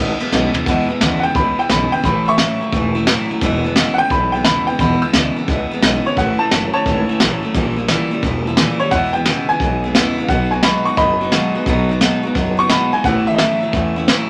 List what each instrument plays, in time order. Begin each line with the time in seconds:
Already playing: clean electric guitar E2 B2, upright piano E5
0.00 upright bass G#1, steel-string acoustic guitar E3 G#3 B3 E4
0.20 clean electric guitar E2 B2, steel-string acoustic guitar E3 G#3 B3 E4, muted upright bass stroke, ride
0.32 upright bass B1, clean electric guitar E2 C#3, steel-string acoustic guitar E2 B2 E3 G#3 B3 E4, snare
0.54 clean electric guitar E2 C#3, steel-string acoustic guitar G#3 B3 E4, muted upright bass stroke, floor tom
0.59 steel-string acoustic guitar E3
0.66 clean electric guitar E2 B2, upright bass E2, steel-string acoustic guitar E2 B2 E3 G#3 B3 E4, kick, open hi-hat
0.88 clean electric guitar E2 B2, steel-string acoustic guitar E3 G#3 B3 E4, muted upright bass stroke
1.00 upright bass D2, clean electric guitar E2 C#3, steel-string acoustic guitar E2 B2 E3 G#3 B3 E4, snare
1.20 clean electric guitar E2 C#3, steel-string acoustic guitar E4, upright piano F#5 G5
1.24 steel-string acoustic guitar E3 G#3 B3
1.34 upright bass C#2, clean electric guitar E2 B2, steel-string acoustic guitar E3 G#3, upright piano B5, kick, open hi-hat
1.39 steel-string acoustic guitar B3 E4
1.56 clean electric guitar E2 B2, steel-string acoustic guitar B3 E4, upright piano G5, muted upright bass stroke
1.61 steel-string acoustic guitar E3 G#3
1.69 upright bass B1, clean electric guitar E2 C#3, steel-string acoustic guitar E2 B2 E3 G#3, upright piano B5, snare
1.73 steel-string acoustic guitar B3 E4
1.91 clean electric guitar E2 C#3, steel-string acoustic guitar B3 E4, upright piano G5
1.95 steel-string acoustic guitar E3 G#3
2.03 upright bass A1, clean electric guitar A2 E3, steel-string acoustic guitar A2 E3 A3 C#4 E4, upright piano B5, kick, open hi-hat
2.25 clean electric guitar A2 E3, steel-string acoustic guitar C#4 E4, upright piano E5 C#6
2.29 steel-string acoustic guitar A3
2.38 clean electric guitar A2 F#3, steel-string acoustic guitar A2 E3 A3 C#4 E4, snare
2.60 clean electric guitar A2 F#3, steel-string acoustic guitar A3 C#4 E4, muted upright bass stroke
2.73 upright bass E1, clean electric guitar A2 E3, steel-string acoustic guitar E3 A3 C#4 E4, kick, open hi-hat
2.95 clean electric guitar A2 E3, steel-string acoustic guitar A3 C#4 E4
3.07 steel-string acoustic guitar A2 E3 A3 C#4 E4, clean electric guitar A2 F#3, snare, open hi-hat
3.29 clean electric guitar A2 F#3, steel-string acoustic guitar A3 C#4 E4, muted upright bass stroke
3.41 upright bass E1, steel-string acoustic guitar E2 B2 E3 G#3 B3 E4, clean electric guitar E2 B2, kick, open hi-hat
3.64 clean electric guitar E2 B2, steel-string acoustic guitar E3 G#3 B3 E4
3.76 steel-string acoustic guitar E2 B2 E3 G#3 B3 E4, clean electric guitar E2 C#3, snare
3.94 upright piano F#5
3.98 clean electric guitar E2 C#3, steel-string acoustic guitar E3 G#3 B3 E4, upright piano G5, muted upright bass stroke
4.10 upright bass B1, clean electric guitar E2 B2, steel-string acoustic guitar E3 G#3 B3 E4, upright piano B5, kick, open hi-hat
4.32 clean electric guitar E2, steel-string acoustic guitar G#3 B3 E4, upright piano G5
4.36 steel-string acoustic guitar E3
4.44 steel-string acoustic guitar E2 B2 E3 G#3 B3 E4, clean electric guitar E2 C#3, upright piano B5, snare
4.67 clean electric guitar E2 C#3, steel-string acoustic guitar E3 G#3 B3 E4, upright piano G5, muted upright bass stroke
4.79 upright bass E1, clean electric guitar E2 B2, steel-string acoustic guitar E2 B2 E3 G#3 B3 E4, upright piano B5, kick, open hi-hat
5.02 clean electric guitar E2 B2, steel-string acoustic guitar E3 G#3 B3 E4, upright piano E6, muted upright bass stroke
5.13 upright bass D2, clean electric guitar E2 C#3, steel-string acoustic guitar E2 B2 E3 G#3 B3 E4, snare
5.36 clean electric guitar E2 C#3, steel-string acoustic guitar E3 G#3 B3 E4
5.47 upright bass C#2, clean electric guitar E2 B2, steel-string acoustic guitar E3 G#3 B3, kick, open hi-hat
5.52 steel-string acoustic guitar E4
5.70 clean electric guitar E2 B2, steel-string acoustic guitar G#3 B3 E4
5.75 steel-string acoustic guitar E3
5.82 upright bass B1, clean electric guitar E2 C#3, steel-string acoustic guitar E2 B2 E3 G#3 B3 E4, snare, open hi-hat
6.04 clean electric guitar E2 C#3, steel-string acoustic guitar G#3 B3 E4, upright piano C#5, muted upright bass stroke
6.09 steel-string acoustic guitar E3
6.16 upright bass A1, clean electric guitar A2 E3, steel-string acoustic guitar A2 E3 A3 C#4 E4, upright piano F#5, kick, open hi-hat
6.39 clean electric guitar A2 E3, steel-string acoustic guitar A3 C#4 E4, upright piano A5, muted upright bass stroke
6.51 upright bass F#1, clean electric guitar A2 F#3, steel-string acoustic guitar A2 E3 A3 C#4 E4, snare, open hi-hat
6.73 clean electric guitar A2 F#3, steel-string acoustic guitar A3 C#4 E4, upright piano C#5 A5
6.85 upright bass G#1, clean electric guitar A2 E3, steel-string acoustic guitar E3 A3 C#4, kick, open hi-hat
6.90 steel-string acoustic guitar E4
7.09 clean electric guitar A2 E3, steel-string acoustic guitar A3 C#4 E4, muted upright bass stroke
7.20 upright bass A1, clean electric guitar A2 F#3, steel-string acoustic guitar A2 E3 A3 C#4, snare
7.24 steel-string acoustic guitar E4
7.43 clean electric guitar A2 F#3, steel-string acoustic guitar A3 C#4 E4, muted upright bass stroke
7.54 upright bass A#1, steel-string acoustic guitar A#2 E3 G3 C#4 E4, clean electric guitar A#2 F3, kick, open hi-hat
7.76 clean electric guitar A#2 F3, steel-string acoustic guitar G3 C#4 E4
7.88 steel-string acoustic guitar A#2 E3 G3 C#4 E4, clean electric guitar A#2 G3, snare
8.11 clean electric guitar A#2 G3, steel-string acoustic guitar G3 C#4 E4, muted upright bass stroke
8.23 upright bass E1, clean electric guitar A#2 F3, steel-string acoustic guitar E3 G3 C#4 E4, kick, open hi-hat
8.46 clean electric guitar A#2 F3, steel-string acoustic guitar C#4 E4
8.50 steel-string acoustic guitar G3
8.57 clean electric guitar A#2 G3, steel-string acoustic guitar A#2 E3 G3 C#4 E4, snare
8.80 clean electric guitar A#2 G3, steel-string acoustic guitar G3 C#4 E4, upright piano C#5, muted upright bass stroke
8.91 upright bass E2, steel-string acoustic guitar E2 B2 E3 G#3 B3 E4, clean electric guitar E2 B2, upright piano F#5, kick, open hi-hat
9.13 clean electric guitar E2 B2, steel-string acoustic guitar G#3 B3 E4, upright piano G5
9.17 steel-string acoustic guitar E3
9.26 steel-string acoustic guitar E2 B2 E3 G#3 B3 E4, clean electric guitar E2 C#3, snare, open hi-hat
9.48 clean electric guitar E2 C#3, steel-string acoustic guitar G#3 B3 E4, upright piano G#5, muted upright bass stroke
9.52 steel-string acoustic guitar E3
9.60 upright bass B1, clean electric guitar E2 B2, steel-string acoustic guitar E3 G#3 B3, kick, open hi-hat
9.65 steel-string acoustic guitar E4
9.82 clean electric guitar E2 B2, steel-string acoustic guitar G#3 B3 E4
9.87 steel-string acoustic guitar E3
9.95 clean electric guitar E2 C#3, steel-string acoustic guitar E2 B2 E3 G#3 B3, snare
9.99 steel-string acoustic guitar E4
10.16 clean electric guitar E2 C#3, steel-string acoustic guitar B3 E4, muted upright bass stroke
10.21 steel-string acoustic guitar E3 G#3, upright piano F5
10.28 upright bass B1, clean electric guitar B2 F#3, steel-string acoustic guitar B2 F#3 B3 D#4 F#4, upright piano F#5, kick, open hi-hat
10.51 clean electric guitar B2 F#3, steel-string acoustic guitar D#4 F#4, upright piano G#5
10.55 steel-string acoustic guitar B3
10.63 steel-string acoustic guitar B2 F#3 B3 D#4 F#4, clean electric guitar B2 G#3, upright piano B5, snare
10.85 clean electric guitar B2 G#3, steel-string acoustic guitar B3 D#4 F#4, upright piano C#6, muted upright bass stroke
10.97 upright bass F#1, clean electric guitar B2 F#3, steel-string acoustic guitar F#3 B3 D#4, upright piano D#5 B5, kick, open hi-hat
11.01 steel-string acoustic guitar F#4
11.20 clean electric guitar B2 F#3, steel-string acoustic guitar D#4 F#4
11.25 steel-string acoustic guitar B3
11.32 clean electric guitar B2 G#3, steel-string acoustic guitar B2 F#3 B3 D#4 F#4, snare, open hi-hat
11.54 clean electric guitar B2 G#3, steel-string acoustic guitar B3 D#4 F#4, muted upright bass stroke
11.66 upright bass B1, clean electric guitar B2 F#3, steel-string acoustic guitar B2 F#3 B3 D#4 F#4, kick, open hi-hat
11.89 clean electric guitar B2 F#3, steel-string acoustic guitar D#4 F#4
11.93 steel-string acoustic guitar B3
12.01 steel-string acoustic guitar B2 F#3 B3 D#4 F#4, clean electric guitar B2 G#3, snare
12.23 clean electric guitar B2 G#3, steel-string acoustic guitar B3 D#4 F#4, muted upright bass stroke
12.35 upright bass F#1, clean electric guitar B2 F#3, steel-string acoustic guitar F#3 B3 D#4 F#4, kick, open hi-hat
12.57 clean electric guitar B2 F#3, steel-string acoustic guitar B3 D#4 F#4, upright piano C#6
12.69 steel-string acoustic guitar B2 F#3 B3 D#4 F#4, clean electric guitar B2 G#3, upright piano B5, snare
12.92 clean electric guitar B2 G#3, steel-string acoustic guitar B3 D#4 F#4, upright piano G#5, muted upright bass stroke
13.04 upright bass A1, steel-string acoustic guitar A2 E3 A3 C#4 E4, clean electric guitar A2 E3, upright piano F#5, kick, open hi-hat
13.27 clean electric guitar A2 E3, steel-string acoustic guitar A3 C#4 E4, upright piano E5
13.34 upright piano D#5, snare
13.39 clean electric guitar A2 F#3, steel-string acoustic guitar A2 E3 A3 C#4 E4, upright piano E5
13.61 clean electric guitar A2 F#3, steel-string acoustic guitar A3 C#4 E4, muted upright bass stroke
13.73 upright bass E2, clean electric guitar A2 E3, steel-string acoustic guitar E3 A3 C#4 E4, kick, open hi-hat
13.96 clean electric guitar A2 E3, steel-string acoustic guitar A3 C#4 E4
14.08 steel-string acoustic guitar A2 E3 A3 C#4 E4, clean electric guitar A2 F#3, snare